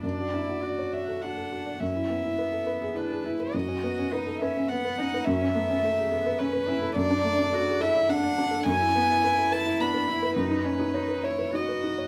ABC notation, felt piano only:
X:1
M:3/4
L:1/16
Q:1/4=104
K:Dlyd
V:1 name="Felt piano"
F,, F D F d c d A F A F d | F,, E B, E B A B G E G E B | F,, C B, C B A B C B, B C B | F,, C A, C A G A B C B C A |
F,, D A, D A G A d D d D A | F,, E B, E B A B E B, B E B | F,, ^D C D c B c B D B D c |]